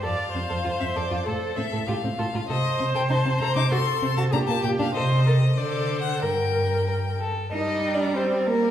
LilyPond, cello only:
\new Staff \with { instrumentName = "Cello" } { \clef bass \time 2/4 \key f \major \tempo 4 = 97 f,16 r16 f,16 f,16 f,16 f,16 f,16 f,16 | a,16 r16 a,16 a,16 a,16 a,16 a,16 a,16 | \key g \minor c16 r16 c16 c16 c16 c16 c16 c16 | c16 r16 c16 c16 bes,16 bes,16 bes,16 bes,16 |
c4 d4 | g,4.~ g,16 r16 | \tuplet 3/2 { ees'4 d'8 } c'8 bes8 | }